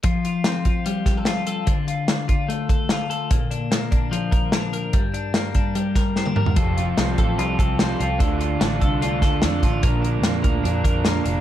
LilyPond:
<<
  \new Staff \with { instrumentName = "Clean electric guitar" } { \time 4/4 \key f \major \tempo 4 = 147 f8 f'8 c'8 f'8 g8 g'16 a'16 f'8 a'8 | d8 f'8 d'8 f'8 a8 a'8 f'8 a'8 | bes,8 d'8 bes8 d'8 f8 bes'8 d'8 bes'8 | g,8 d'8 bes8 d'8 g8 bes'8 c'16 d'16 bes'8 |
<f a'>8 f'8 c'8 a'8 f'8 a'8 c'8 f'8 | <d a'>8 f'8 d'8 a'8 f'8 a'8 d'8 f'8 | <bes, bes'>8 d'8 bes8 bes'8 d'8 bes'8 bes8 d'8 | }
  \new Staff \with { instrumentName = "Overdriven electric guitar" } { \time 4/4 \key f \major r1 | r1 | r1 | r1 |
<f g c' f' a'>8 <c' f' a'>8 <f g c' f' a'>8 <c' f' a'>8 <g c' f' a'>8 <c' f' a'>8 <f g c' f' a'>8 <c' f' a'>8 | <d a d' f' a'>8 <d' f' a'>8 <d a d' f' a'>8 <d' f' a'>8 <a d' f' a'>8 <d' f' a'>8 <d a d' f' a'>8 <d' f' a'>8 | <bes, d f bes d' bes'>8 <f bes d' bes'>8 <bes, d f bes d' bes'>8 <f bes d' bes'>8 <f bes d' bes'>8 <f bes d' bes'>8 <bes, d f bes d' bes'>8 <f bes d' bes'>8 | }
  \new Staff \with { instrumentName = "Picked electric bass" } { \clef bass \time 4/4 \key f \major r1 | r1 | r1 | r1 |
f,,4 c,8 a,,8 c,8 c,4 c,8 | d,4 a,,8 c,4 d,8 f,8 a,,8 | bes,,4 f,8 d,8 f,8 f,4 f,,8 | }
  \new DrumStaff \with { instrumentName = "Drums" } \drummode { \time 4/4 <hh bd>8 hh8 <hh sn>8 <hh bd>8 hh8 <hh bd sn>8 <hh sn>8 hh8 | <hh bd>8 hh8 <hh sn>8 <hh bd>8 hh8 <hh bd>8 <hh sn>8 hh8 | <hh bd>8 hh8 <hh sn>8 <hh bd>8 hh8 <hh bd>8 <hh sn>8 hh8 | <hh bd>8 hh8 <hh sn>8 <hh bd>8 hh8 <hh bd sn>8 sn16 tommh16 toml16 tomfh16 |
<hh bd>8 hh8 <hh sn>8 <hh bd>8 hh8 <hh bd>8 <hh sn>8 hh8 | <hh bd>8 hh8 <hh sn>8 <hh bd>8 hh8 <hh bd sn>8 <hh sn>8 <hh bd>8 | <hh bd>8 hh8 <hh sn>8 <hh bd>8 hh8 <hh bd>8 <hh sn>8 hh8 | }
>>